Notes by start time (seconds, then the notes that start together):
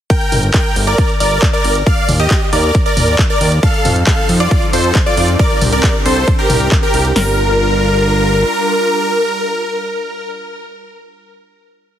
0.10 A#4 G5, kick, closed hi-hat
0.21 closed hi-hat
0.32 G1, open hi-hat, mid tom
0.43 closed hi-hat
0.54 A#4 G5, kick, clap, closed hi-hat
0.76 G1, open hi-hat
0.87 A#4 D5
0.98 kick, closed hi-hat
1.09 closed hi-hat
1.20 G1 A#4 D5, open hi-hat
1.31 closed hi-hat
1.42 kick, clap, closed hi-hat
1.53 A#4 D5
1.64 G1, open hi-hat
1.75 closed hi-hat
1.86 D5 F5, kick, closed hi-hat
1.98 closed hi-hat
2.09 D#2, open hi-hat, mid tom
2.20 G4 D#5, closed hi-hat
2.31 kick, clap, closed hi-hat
2.53 D#2 A#4 D5, open hi-hat
2.64 closed hi-hat
2.75 kick, closed hi-hat
2.86 A#4 D5, closed hi-hat
2.97 D#2, open hi-hat, mid tom
3.19 kick, clap, closed hi-hat
3.30 A#4 D5
3.41 D#2, open hi-hat
3.52 closed hi-hat
3.63 F3 C4 D#4 A4 F5, kick, closed hi-hat
3.74 closed hi-hat
3.85 F2, open hi-hat, mid tom
3.96 closed hi-hat
4.07 A4 F5, kick, clap, closed hi-hat
4.29 F2, open hi-hat
4.40 F4 D5, closed hi-hat
4.51 kick, closed hi-hat
4.62 closed hi-hat
4.73 F2 A4 C5, open hi-hat
4.84 closed hi-hat
4.95 kick, clap, closed hi-hat
5.06 F4 D5
5.17 F2, open hi-hat
5.28 closed hi-hat
5.39 C3 D4 G4 A#4 D5, kick, closed hi-hat
5.50 closed hi-hat
5.61 C2, open hi-hat, mid tom
5.72 A#4 D5
5.84 kick, clap, closed hi-hat
6.06 C2 A4 C5, open hi-hat
6.28 kick, closed hi-hat
6.39 G4 A#4, closed hi-hat
6.50 C2, open hi-hat, mid tom
6.72 kick, clap, closed hi-hat
6.83 G4 A#4
6.94 C2, open hi-hat
7.05 closed hi-hat
7.16 G1 G3 D4 F4 A#4, snare, open hi-hat